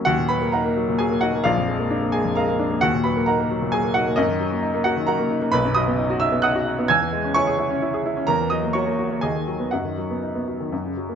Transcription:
<<
  \new Staff \with { instrumentName = "Grand piano" } { \time 3/4 \key ees \minor \tempo 4 = 131 <ges' ges''>8 <ces'' ces'''>8 <bes' ges'' bes''>4 <aes' aes''>8 <ges' ges''>8 | <f' d'' f''>4. <aes' aes''>8 <bes' f'' bes''>4 | <ges' ges''>8 <ces'' ces'''>8 <bes' ges'' bes''>4 <aes' aes''>8 <ges' ges''>8 | <ees' bes' ees''>4. <ges' ges''>8 <bes' ges'' bes''>4 |
\key b \major <b' b''>8 <dis'' b'' dis'''>4 <e'' e'''>8 <fis'' dis''' fis'''>4 | <gis'' e''' gis'''>4 <cis'' gis'' cis'''>2 | <ais' ais''>8 <dis'' dis'''>8 <cis'' ais'' cis'''>4 <gis' dis'' gis''>4 | <fis' dis'' fis''>2~ <fis' dis'' fis''>8 r8 | }
  \new Staff \with { instrumentName = "Grand piano" } { \time 3/4 \key ees \minor ees,16 bes,16 ges16 bes16 ees'16 bes16 ges16 bes,16 ges16 bes16 ees'16 bes16 | bes,,16 f,16 aes16 bes16 d'16 bes16 aes16 f,16 aes16 bes16 d'16 bes16 | ees,16 bes,16 ges16 bes16 ees'16 bes16 ges16 bes,16 ges16 bes16 ees'16 bes16 | ges,16 ees16 ges16 bes16 ees'16 bes16 ges16 ees16 ges16 bes16 ees'16 bes16 |
\key b \major b,,16 fis,16 fis16 b16 dis'16 fis'16 dis'16 b16 dis'16 fis'16 dis'16 b16 | e,16 e16 gis16 cis'16 e'16 gis'16 e'16 cis'16 e'16 gis'16 e'16 cis'16 | e,16 e16 fis16 ais16 fis'16 ais16 fis'16 ais16 dis,16 dis16 fis16 b16 | fis,16 dis16 fis16 b16 dis'16 b16 fis16 dis16 fis,16 cis16 fis16 ais16 | }
>>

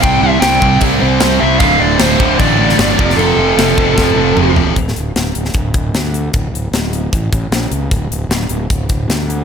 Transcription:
<<
  \new Staff \with { instrumentName = "Lead electric guitar" } { \time 4/4 \key f \major \tempo 4 = 152 g''8 e''8 g''4 r8 c''4 e''8 | f''8 d''8 c''4 d''2 | a'2.~ a'8 r8 | r1 |
r1 | r1 | }
  \new Staff \with { instrumentName = "Distorted electric guitar" } { \clef bass \time 4/4 \key f \major <c g c'>8 <c g c'>8 <c g c'>8 <c g c'>8 <c g c'>8 <c g c'>8 <c g c'>8 <c g c'>8 | <d, a, d>8 <d, a, d>8 <d, a, d>8 <d, a, d>8 <d, a, d>8 <d, a, d>8 <d, a, d>8 <f, c f>8 | <f, c f>8 <f, c f>8 <f, c f>8 <f, c f>8 <f, c f>8 <f, c f>8 <f, c f>8 <f, c f>8 | r1 |
r1 | r1 | }
  \new Staff \with { instrumentName = "Distorted electric guitar" } { \clef bass \time 4/4 \key f \major <c g c'>1 | <d, a, d>2.~ <d, a, d>8 <f, c f>8~ | <f, c f>2.~ <f, c f>8 r8 | r1 |
r1 | r1 | }
  \new Staff \with { instrumentName = "Overdriven electric guitar" } { \clef bass \time 4/4 \key f \major <c g c'>8 <c g c'>8 <c g c'>8 <c g c'>8 <c g c'>8 <c g c'>8 <c g c'>8 <c g c'>8 | <d, a, d>8 <d, a, d>8 <d, a, d>8 <d, a, d>8 <d, a, d>8 <d, a, d>8 <d, a, d>8 <f, c f>8 | <f, c f>8 <f, c f>8 <f, c f>8 <f, c f>8 <f, c f>8 <f, c f>8 <f, c f>8 <f, c f>8 | r1 |
r1 | r1 | }
  \new Staff \with { instrumentName = "Fingered electric bass" } { \clef bass \time 4/4 \key f \major c,8 c,8 c,8 c,8 c,8 c,8 c,8 c,8 | d,,8 d,,8 d,,8 d,,8 a,,4 g,,8 f,,8 | f,,8 f,,8 f,,8 f,,8 f,,8 f,,8 f,,8 e,,8 | d,,8 d,,8 d,,8 d,,8 d,,4 d,4 |
d,,8 d,,8 d,,4 a,,8 a,,8 bes,,8 des,8 | d,,8 d,,8 d,,8 d,,8 d,,4 d,4 | }
  \new DrumStaff \with { instrumentName = "Drums" } \drummode { \time 4/4 <cymc bd>4 <cymc sn>8 bd8 <cymc bd>4 <cymc sn>4 | <cymc bd>4 <cymc sn>8 bd8 <cymc bd>8. sn16 <cymc sn>8 bd16 sn16 | cymc4 <cymc sn>8 bd8 <bd sn>4 toml8 tomfh8 | <hh bd>16 sn16 hh8 <hh sn>8 hh16 sn16 <hh bd>8 <hh bd>8 <hh sn>8 hh8 |
<hh bd>8 hh8 <hh sn>8 hh8 <hh bd>8 <hh bd>8 <hh sn>8 hh8 | <hh bd>8 hh8 <hh sn>8 hh8 <hh bd>8 <hh bd>8 <hh sn>8 hh8 | }
>>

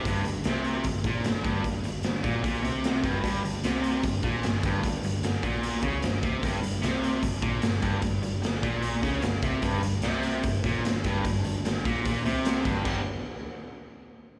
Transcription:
<<
  \new Staff \with { instrumentName = "Overdriven electric guitar" } { \clef bass \time 4/4 \key c \major \tempo 4 = 150 g,8 g,8 c4 g,8 bes,8 g,8 g,8 | g,8 g,8 g,8 bes,8 bes,8 c4 g,8 | g,8 g,8 c4 g,8 bes,8 g,8 g,8 | g,8 g,8 g,8 bes,4 cis8 g,8 c8 |
g,8 g,8 c4 g,8 bes,8 g,8 g,8 | g,8 g,8 g,8 bes,4 cis8 g,8 c8 | g,8 g,8 c4 g,8 bes,8 g,8 g,8 | g,8 g,8 g,8 bes,8 bes,8 c4 g,8 |
<g, d g>8 r2. r8 | }
  \new Staff \with { instrumentName = "Picked electric bass" } { \clef bass \time 4/4 \key c \major g,,8 g,,8 c,4 g,,8 bes,,8 g,,8 g,,8 | g,,8 g,,8 g,,8 bes,,8 bes,,8 c,4 g,,8 | g,,8 g,,8 c,4 g,,8 bes,,8 g,,8 g,,8 | g,,8 g,,8 g,,8 bes,,4 cis,8 g,,8 c,8 |
g,,8 g,,8 c,4 g,,8 bes,,8 g,,8 g,,8 | g,,8 g,,8 g,,8 bes,,4 cis,8 g,,8 c,8 | g,,8 g,,8 c,4 g,,8 bes,,8 g,,8 g,,8 | g,,8 g,,8 g,,8 bes,,8 bes,,8 c,4 g,,8 |
g,,8 r2. r8 | }
  \new DrumStaff \with { instrumentName = "Drums" } \drummode { \time 4/4 <hh bd>8 hh8 <hh sn>8 hh8 <hh bd>8 <hh bd>8 <hh sn>8 <hh bd>8 | <hh bd>8 hh8 <hh sn>8 <hh bd>8 <hh bd>8 hh8 <hh sn>8 <hh bd>8 | <hh bd>8 hh8 <hh sn>8 hh8 <hh bd>8 <hh bd>8 <hh sn>8 <hh bd>8 | <hh bd>8 hh8 <hh sn>8 <hh bd>8 hh8 <hh bd>8 <hh sn>8 <hh bd>8 |
<hh bd>8 hh8 <hh sn>8 hh8 <hh bd>8 <hh bd>8 <hh sn>8 <hh bd>8 | <hh bd>8 hh8 <hh sn>8 <hh bd>8 hh8 <hh bd sn>8 <hh sn>8 <hh bd>8 | <hh bd>8 hh8 <hh sn>8 hh8 <hh bd>8 <hh bd sn>8 <hh sn>8 <hh bd>8 | <hh bd>8 hh8 <hh sn>8 <hh bd>8 <hh bd>8 hh8 <hh sn>8 <hh bd>8 |
<cymc bd>4 r4 r4 r4 | }
>>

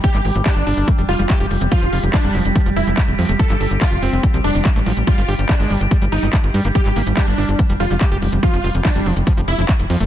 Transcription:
<<
  \new Staff \with { instrumentName = "Supersaw synth" } { \time 4/4 \key f \dorian \tempo 4 = 143 g'8 r8 d'8 r4 f'8 r4 | f'8 r8 d'8 r4 e'8 r4 | a'8 r8 f'8 r4 d'8 r4 | f'8 r8 d'8 r4 ees'8 r4 |
g'8 r8 d'8 r4 f'8 r4 | f'8 r8 d'8 r4 e'8 r4 | }
  \new Staff \with { instrumentName = "Synth drone" } { \time 4/4 \key f \dorian <g g'>1~ | <g g'>1~ | <g g'>1~ | <g g'>1~ |
<g g'>1~ | <g g'>1 | }
  \new Staff \with { instrumentName = "Acid bass" } { \clef bass \time 4/4 \key f \dorian g16 g16 r8 g'16 r16 d'8 g16 g16 g16 g16 g'16 g'16 r8 | f16 f16 f'16 r16 f16 g16 f16 r16 f16 f16 r16 f16 r8 f16 a16 | f16 f16 r8 f'16 r16 c'8 f16 f16 r8 g16 a16 f16 r16 | g16 g16 g'16 r16 g16 aes16 g16 r16 g16 g16 r16 g16 r8 g16 bes16 |
g16 g16 bes16 r16 g'16 r16 d'8 g16 g16 g16 g16 g'16 g'16 r8 | f16 f16 f'16 r16 f16 g16 f16 r16 f16 f16 r16 f16 r8 f16 a16 | }
  \new Staff \with { instrumentName = "Analog synth bass" } { \clef bass \time 4/4 \key f \dorian r16 aes,,16 aes,,16 aes,,16 r16 g,,16 g,,16 g,,16 r16 f,,16 f,,16 f,,16 r16 f,,16 f,,16 f,,16 | r16 f,,16 f,,16 f,,16 r16 f,,16 f,,16 f,,16 r16 f,,16 f,,16 f,,16 r16 f,,16 f,16 f,,16 | r16 g,,16 g,,16 g,,16 r16 f,,16 f,,16 f,,16 r16 c,16 f,,16 f,,16 r16 a,,16 a,,16 a,,16 | r16 g,,16 g,,16 g,,16 r16 g,,16 g,,16 g,,16 r16 g,,16 g,,16 g,,16 r16 g,,16 g,16 g,,16 |
r16 aes,,16 aes,,16 aes,,16 r16 g,,16 g,,16 g,,16 r16 f,,16 f,,16 f,,16 r16 f,,16 f,,16 f,,16 | r16 f,,16 f,,16 f,,16 r16 f,,16 f,,16 f,,16 r16 f,,16 f,,16 f,,16 r16 f,,16 f,16 f,,16 | }
  \new DrumStaff \with { instrumentName = "Drums" } \drummode { \time 4/4 <hh bd>16 <hc hh>16 hho16 hh16 <hc hh bd>16 hh16 hho16 hh16 <hh bd>16 hh16 hho16 hh16 <hc hh bd>16 hh16 hho16 hh16 | <hh bd>16 hh16 hho16 hh16 <hc hh bd>16 hh16 hho16 hh16 <hh bd>16 hh16 hho16 hh16 <hc hh bd>16 hh16 hho16 hh16 | <hh bd>16 <hc hh>16 hho16 hh16 <hc hh bd>16 hh16 hho16 hh16 <hh bd>16 hh16 hho16 hh16 <hc hh bd>16 hh16 hho16 hh16 | <hh bd>16 hh16 hho16 hh16 <hc hh bd>16 hh16 hho16 hh16 <hh bd>16 hh16 hho16 hh16 <hc hh bd>16 hh16 hho16 hh16 |
<hh bd>16 <hc hh>16 hho16 hh16 <hc hh bd>16 hh16 hho16 hh16 <hh bd>16 hh16 hho16 hh16 <hc hh bd>16 hh16 hho16 hh16 | <hh bd>16 hh16 hho16 hh16 <hc hh bd>16 hh16 hho16 hh16 <hh bd>16 hh16 hho16 hh16 <hc hh bd>16 hh16 hho16 hh16 | }
>>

